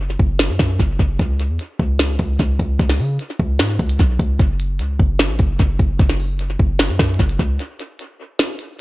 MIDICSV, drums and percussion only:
0, 0, Header, 1, 2, 480
1, 0, Start_track
1, 0, Tempo, 400000
1, 1434, Time_signature, 4, 2, 24, 8
1, 10571, End_track
2, 0, Start_track
2, 0, Title_t, "Drums"
2, 234, Note_on_c, 9, 36, 95
2, 354, Note_off_c, 9, 36, 0
2, 472, Note_on_c, 9, 38, 112
2, 592, Note_off_c, 9, 38, 0
2, 712, Note_on_c, 9, 36, 86
2, 712, Note_on_c, 9, 38, 95
2, 832, Note_off_c, 9, 36, 0
2, 832, Note_off_c, 9, 38, 0
2, 954, Note_on_c, 9, 36, 95
2, 1074, Note_off_c, 9, 36, 0
2, 1192, Note_on_c, 9, 36, 91
2, 1312, Note_off_c, 9, 36, 0
2, 1433, Note_on_c, 9, 36, 115
2, 1434, Note_on_c, 9, 42, 77
2, 1553, Note_off_c, 9, 36, 0
2, 1554, Note_off_c, 9, 42, 0
2, 1675, Note_on_c, 9, 42, 81
2, 1795, Note_off_c, 9, 42, 0
2, 1912, Note_on_c, 9, 42, 75
2, 2032, Note_off_c, 9, 42, 0
2, 2154, Note_on_c, 9, 36, 92
2, 2274, Note_off_c, 9, 36, 0
2, 2392, Note_on_c, 9, 42, 82
2, 2393, Note_on_c, 9, 38, 111
2, 2512, Note_off_c, 9, 42, 0
2, 2513, Note_off_c, 9, 38, 0
2, 2628, Note_on_c, 9, 42, 69
2, 2633, Note_on_c, 9, 36, 82
2, 2748, Note_off_c, 9, 42, 0
2, 2753, Note_off_c, 9, 36, 0
2, 2872, Note_on_c, 9, 42, 71
2, 2875, Note_on_c, 9, 36, 99
2, 2992, Note_off_c, 9, 42, 0
2, 2995, Note_off_c, 9, 36, 0
2, 3113, Note_on_c, 9, 36, 90
2, 3116, Note_on_c, 9, 42, 61
2, 3233, Note_off_c, 9, 36, 0
2, 3236, Note_off_c, 9, 42, 0
2, 3353, Note_on_c, 9, 36, 117
2, 3354, Note_on_c, 9, 42, 75
2, 3473, Note_off_c, 9, 36, 0
2, 3474, Note_off_c, 9, 42, 0
2, 3474, Note_on_c, 9, 38, 62
2, 3594, Note_off_c, 9, 38, 0
2, 3596, Note_on_c, 9, 46, 84
2, 3716, Note_off_c, 9, 46, 0
2, 3832, Note_on_c, 9, 42, 85
2, 3952, Note_off_c, 9, 42, 0
2, 4074, Note_on_c, 9, 36, 92
2, 4194, Note_off_c, 9, 36, 0
2, 4312, Note_on_c, 9, 38, 107
2, 4312, Note_on_c, 9, 42, 80
2, 4432, Note_off_c, 9, 38, 0
2, 4432, Note_off_c, 9, 42, 0
2, 4553, Note_on_c, 9, 36, 85
2, 4553, Note_on_c, 9, 42, 43
2, 4673, Note_off_c, 9, 36, 0
2, 4673, Note_off_c, 9, 42, 0
2, 4673, Note_on_c, 9, 42, 74
2, 4792, Note_off_c, 9, 42, 0
2, 4792, Note_on_c, 9, 42, 70
2, 4794, Note_on_c, 9, 36, 96
2, 4912, Note_off_c, 9, 42, 0
2, 4914, Note_off_c, 9, 36, 0
2, 5033, Note_on_c, 9, 36, 93
2, 5036, Note_on_c, 9, 42, 58
2, 5153, Note_off_c, 9, 36, 0
2, 5156, Note_off_c, 9, 42, 0
2, 5273, Note_on_c, 9, 36, 112
2, 5274, Note_on_c, 9, 42, 78
2, 5393, Note_off_c, 9, 36, 0
2, 5394, Note_off_c, 9, 42, 0
2, 5516, Note_on_c, 9, 42, 82
2, 5636, Note_off_c, 9, 42, 0
2, 5752, Note_on_c, 9, 42, 76
2, 5872, Note_off_c, 9, 42, 0
2, 5994, Note_on_c, 9, 36, 94
2, 6114, Note_off_c, 9, 36, 0
2, 6232, Note_on_c, 9, 38, 112
2, 6232, Note_on_c, 9, 42, 80
2, 6352, Note_off_c, 9, 38, 0
2, 6352, Note_off_c, 9, 42, 0
2, 6468, Note_on_c, 9, 42, 70
2, 6472, Note_on_c, 9, 36, 89
2, 6588, Note_off_c, 9, 42, 0
2, 6592, Note_off_c, 9, 36, 0
2, 6711, Note_on_c, 9, 42, 72
2, 6714, Note_on_c, 9, 36, 98
2, 6831, Note_off_c, 9, 42, 0
2, 6834, Note_off_c, 9, 36, 0
2, 6952, Note_on_c, 9, 36, 92
2, 6956, Note_on_c, 9, 42, 62
2, 7072, Note_off_c, 9, 36, 0
2, 7076, Note_off_c, 9, 42, 0
2, 7193, Note_on_c, 9, 36, 115
2, 7194, Note_on_c, 9, 42, 74
2, 7313, Note_off_c, 9, 36, 0
2, 7314, Note_off_c, 9, 42, 0
2, 7314, Note_on_c, 9, 38, 59
2, 7434, Note_off_c, 9, 38, 0
2, 7436, Note_on_c, 9, 46, 84
2, 7556, Note_off_c, 9, 46, 0
2, 7671, Note_on_c, 9, 42, 79
2, 7791, Note_off_c, 9, 42, 0
2, 7913, Note_on_c, 9, 36, 95
2, 8033, Note_off_c, 9, 36, 0
2, 8151, Note_on_c, 9, 42, 83
2, 8152, Note_on_c, 9, 38, 112
2, 8271, Note_off_c, 9, 42, 0
2, 8272, Note_off_c, 9, 38, 0
2, 8392, Note_on_c, 9, 36, 85
2, 8392, Note_on_c, 9, 37, 66
2, 8392, Note_on_c, 9, 38, 97
2, 8393, Note_on_c, 9, 42, 44
2, 8453, Note_off_c, 9, 42, 0
2, 8453, Note_on_c, 9, 42, 52
2, 8512, Note_off_c, 9, 36, 0
2, 8512, Note_off_c, 9, 37, 0
2, 8512, Note_off_c, 9, 38, 0
2, 8513, Note_off_c, 9, 42, 0
2, 8513, Note_on_c, 9, 42, 62
2, 8572, Note_off_c, 9, 42, 0
2, 8572, Note_on_c, 9, 42, 75
2, 8632, Note_off_c, 9, 42, 0
2, 8632, Note_on_c, 9, 42, 61
2, 8634, Note_on_c, 9, 36, 94
2, 8752, Note_off_c, 9, 42, 0
2, 8753, Note_on_c, 9, 42, 62
2, 8754, Note_off_c, 9, 36, 0
2, 8872, Note_on_c, 9, 36, 95
2, 8873, Note_off_c, 9, 42, 0
2, 8875, Note_on_c, 9, 42, 59
2, 8992, Note_off_c, 9, 36, 0
2, 8995, Note_off_c, 9, 42, 0
2, 9113, Note_on_c, 9, 42, 76
2, 9233, Note_off_c, 9, 42, 0
2, 9355, Note_on_c, 9, 42, 82
2, 9475, Note_off_c, 9, 42, 0
2, 9591, Note_on_c, 9, 42, 74
2, 9711, Note_off_c, 9, 42, 0
2, 10071, Note_on_c, 9, 42, 82
2, 10072, Note_on_c, 9, 38, 108
2, 10191, Note_off_c, 9, 42, 0
2, 10192, Note_off_c, 9, 38, 0
2, 10308, Note_on_c, 9, 42, 72
2, 10428, Note_off_c, 9, 42, 0
2, 10571, End_track
0, 0, End_of_file